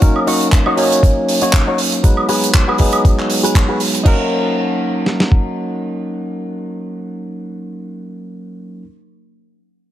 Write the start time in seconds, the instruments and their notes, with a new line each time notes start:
Already playing: clean electric guitar D#4 F#4 C#5
0.01 tine electric piano F#3 A#3 C#4 D#4 A#4, kick, closed hi-hat
0.16 high woodblock
0.27 clean electric guitar D#4 F#4 C#5, open hi-hat
0.41 closed hi-hat
0.52 kick, clap, closed hi-hat
0.66 clean electric guitar D#4 F#4 C#5, high woodblock
0.77 tine electric piano F#3 A#3 C#4 D#4 C#5, open hi-hat
0.92 closed hi-hat
1.03 kick, closed hi-hat
1.29 open hi-hat
1.41 clean electric guitar D#4 F#4 C#5, closed hi-hat
1.53 kick, clap, closed hi-hat
1.67 clean electric guitar D#4 F#4 C#5
1.78 open hi-hat
1.92 muted clean electric guitar stroke, closed hi-hat
2.03 tine electric piano F#3 G#3 B3 D#4 B4, kick, closed hi-hat
2.17 high woodblock
2.29 clean electric guitar F#4 G#4 B4, open hi-hat
2.43 closed hi-hat
2.54 kick, clap, closed hi-hat
2.68 clean electric guitar F#4 G#4 B4, high woodblock
2.78 tine electric piano F#3 G#3 B3 D#4 G#4, kick, open hi-hat
2.92 closed hi-hat, high woodblock
3.05 kick, closed hi-hat
3.19 clap
3.30 open hi-hat
3.43 clean electric guitar F#4 G#4 B4, closed hi-hat
3.55 kick, clap, closed hi-hat
3.68 clean electric guitar F#4 G#4 B4
3.80 open hi-hat
3.94 muted clean electric guitar stroke, closed hi-hat
4.04 tine electric piano F#3 A#3 C#4 D#4 A#4, clean electric guitar D#4 F#4, kick, crash
4.08 clean electric guitar A#4
5.06 snare
5.20 snare
5.32 kick